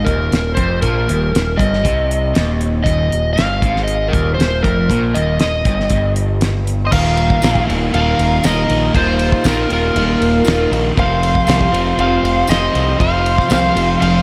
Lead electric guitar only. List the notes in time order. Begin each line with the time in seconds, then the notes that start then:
6.85 C5
6.92 A#4
7.96 A#4
8.46 A#4
8.97 F4
9.48 F4
9.74 F4
11.00 C5
12.00 C5
12.50 C5
13.02 C5
13.53 C5
14.03 C5